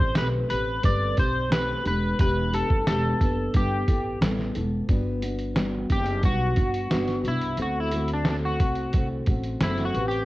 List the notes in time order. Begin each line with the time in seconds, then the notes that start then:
Already playing: C4 G4 C5
0.00 A1, kick
0.15 B1 A3 C4 G4 B4, snare, closed hi-hat
0.48 A1 C4 G4 B4, closed hi-hat
0.82 G1 A3 C4 G4 B4 D5, kick, closed hi-hat
1.17 B1 C4 G4 C5, kick, closed hi-hat
1.49 A3 C4 G4 B4, snare, closed hi-hat
1.83 E1 B3 D4 G4, closed hi-hat
1.87 B4
2.19 E1 E3 B3 D4 G4 B4, kick, closed hi-hat
2.51 B3 D4 G4 A4, closed hi-hat
2.70 F#1, kick
2.85 E1 E3 B3 D4 G4 A4, snare, closed hi-hat
3.19 F#1 B3 D4 G4, kick, closed hi-hat
3.54 G1 G3 B3 E4 G4 A4, kick, closed hi-hat
3.87 A1 B3 E4 A4, kick, closed hi-hat
4.21 A1 G3 B3 E4 A4, snare, closed hi-hat
4.39 snare
4.55 E1 B3 E4 A4, closed hi-hat
4.89 G1 G3 B3 D4 F#4, kick, closed hi-hat
5.22 B3 D4 F#4, closed hi-hat
5.39 closed hi-hat
5.55 G3 B3 D4 F#4, snare, closed hi-hat
5.89 F#1 D4 G4, kick, closed hi-hat
6.06 closed hi-hat
6.23 B1 G3 B3 D4 F#4, kick, closed hi-hat
6.56 G1 B3 D4 F#4, kick, closed hi-hat
6.74 closed hi-hat
6.90 G1 G3 B3 D4 F#4, snare, closed hi-hat
7.07 snare, closed hi-hat
7.24 C2 B3 D4 F#4, closed hi-hat
7.28 E4
7.41 closed hi-hat
7.57 D2 D3 A3 C4 F#4, closed hi-hat
7.62 F#4
7.80 E4
7.91 A3 C4 F#4, closed hi-hat
8.08 closed hi-hat
8.13 D4
8.25 D3 A3 C4 F#4, snare, closed hi-hat
8.30 D4
8.45 F#4
8.60 C2 A3 C4 F#4, kick, closed hi-hat
8.75 closed hi-hat
8.93 C2 D3 A3, kick, closed hi-hat
8.97 C4 F#4
9.26 A1 F#4, kick, closed hi-hat
9.30 A3 C4
9.44 closed hi-hat
9.60 F#1 D3 A3 C4 E4, snare, closed hi-hat
9.65 F#4
9.78 snare, closed hi-hat
9.85 F#4
9.94 A1 G4 B4, closed hi-hat
9.99 C4
10.08 G4, closed hi-hat